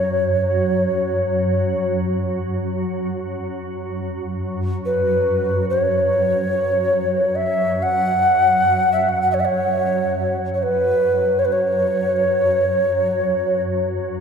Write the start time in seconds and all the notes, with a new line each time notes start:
Already playing: F#2 C#5
4.86 B4
5.70 C#5
7.35 E5
7.83 F#5
8.92 E5
9.09 F#5
9.22 F#5
9.31 C#5 E5
9.40 E5
9.45 C#5
10.37 F#2
10.54 C#5
10.63 B4
11.39 C#5
11.45 B4
11.52 C#5